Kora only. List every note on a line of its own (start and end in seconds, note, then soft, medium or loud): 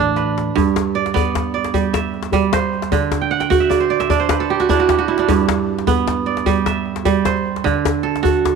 0.00 0.54 D3 medium
0.00 1.64 D4 medium
0.00 0.24 F#4 medium
0.00 0.10 A4 medium
0.00 0.23 C5 medium
0.17 1.39 B4 medium
0.56 2.90 G2 medium
0.95 1.14 D5 medium
1.14 2.59 B3 medium
1.14 1.54 D5 medium
1.54 2.65 D5 medium
1.74 2.32 G3 medium
1.93 2.97 E5 medium
2.33 2.97 G3 medium
2.53 3.72 C5 medium
2.92 5.26 D3 medium
3.21 3.40 G5 medium
3.31 3.50 F#5 medium
3.40 4.33 G5 medium
3.50 4.56 F#4 medium
3.50 4.47 F#5 medium
3.60 3.99 E5 medium
3.70 3.90 D5 medium
3.80 4.19 C5 medium
3.90 4.10 D5 medium
4.00 5.03 E5 medium
4.10 4.69 D4 medium
4.10 5.21 D5 medium
4.20 5.38 C5 medium
4.29 5.52 B4 medium
4.40 5.72 A4 medium
4.50 4.86 G4 medium
4.60 4.79 F#4 medium
4.69 5.19 D4 medium
4.69 5.08 E4 medium
4.80 4.98 F#4 medium
4.89 6.30 G4 medium
4.99 5.34 F#4 medium
5.08 6.65 E4 medium
5.19 6.87 D4 medium
5.28 7.62 G2 medium
5.87 7.31 B3 medium
6.26 7.37 D5 medium
6.46 7.04 G3 medium
6.66 7.70 E5 medium
7.05 7.69 G3 medium
7.25 8.44 C5 medium
7.64 8.55 D3 medium
8.03 8.22 A4 medium
8.23 8.55 F#4 medium
8.23 8.55 A4 medium